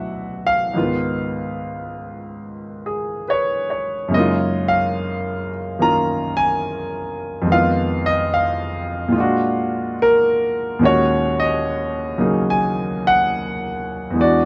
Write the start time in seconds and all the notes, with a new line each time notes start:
Already playing: D2 A2 B2 E3 F#3 C#4 D4 F#4 E5 F#5
0.47 F5
0.73 C#2 G#2 D#3 B3
0.78 F4
2.86 G#4
3.28 B4 C#5
3.70 C#5
4.08 F#2 C#3 G#3
4.14 A#3 D#4 D#5
4.19 F4
4.68 F5
5.79 D#3 A#3 C#4 F4 A#5
6.37 G#5
7.42 F2 D#3
7.47 G#3 B3
7.52 F4 F5
8.06 D#5
8.34 F5
9.08 A#2 F4
9.14 G#3 D4
9.20 F#4
10.02 A#4
10.79 D#2 A#2 D#3 G#3 C#4
10.83 F#4 C#5
11.40 D#5
12.18 C#3 F#3 A#3 D#4 G#4
12.50 G#5
13.07 F#5
14.10 E2 E3
14.15 G#3
14.20 D4 F#4 D5